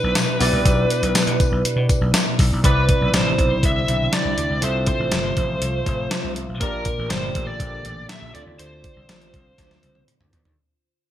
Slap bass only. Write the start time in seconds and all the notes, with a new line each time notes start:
0.04 B1
0.16 B2
0.40 B1
0.53 C2
0.66 B1
1.02 B1
1.15 muted slap bass stroke
1.27 B2
1.52 B1
1.64 muted slap bass stroke
1.76 B2
2.01 B1
2.14 B2
2.39 B1
2.52 B1
2.64 C2
3.01 B1
3.14 A1
3.39 B1
3.63 C2
3.88 B1
4.25 C2
4.37 D2
4.50 C#2
4.62 C2
5.00 A1
5.12 G1
5.37 A1
5.62 C2
5.86 A1
6.24 C2
6.36 C2
6.49 B1
6.61 A#1
6.99 A1
7.11 G1
7.35 A1
7.60 A#1
7.85 A1
8.22 A#1
8.34 D2
8.47 D#2
8.59 D2
8.96 C2
9.09 A1
9.34 C2
9.58 D2
9.83 C2
10.20 D2
10.33 E2
10.45 D#2